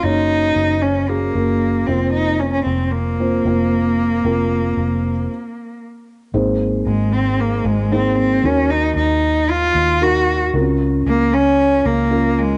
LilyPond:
<<
  \new Staff \with { instrumentName = "Felt piano" } { \time 4/4 \key f \phrygian \tempo 4 = 114 <bes des' ges' des''>4. r8 <bes des' ges' aes'>8 <bes des' ges' bes'>4 <bes c' f' c''>8~ | <bes c' f' c''>4 r4 <bes c' f' c''>8 <bes c' f' c''>4 r8 | <bes c' f' bes'>4. r2 r8 | <aes, bes c' ees' aes' c''>4. r4. <bes c' ees' aes' c''>4 |
<ees ees' ges' bes'>4. r4. <ees' ges' bes'>4 | <des c' des' f' bes'>4. r4. <des' f' bes'>4 | }
  \new Staff \with { instrumentName = "Cello" } { \time 4/4 \key f \phrygian ees'4. des'8 bes4. c'8 | ees'8 des'16 des'16 c'8 bes2~ bes8~ | bes2. r4 | r4 aes8 c'8 bes8 aes8 c'8 c'8 |
des'8 ees'8 ees'4 f'4 ges'8. r16 | r4 bes8 des'4 bes4 aes8 | }
  \new Staff \with { instrumentName = "Fingered electric bass" } { \clef bass \time 4/4 \key f \phrygian ges,,4 ges,,4. ges,,4 f,,8~ | f,,4 f,,4. f,,4. | f,,4 f,,4 r2 | aes,,4 aes,,4. aes,,4. |
ees,4 ees,4. ees,4. | des,4 des,4. des,4. | }
>>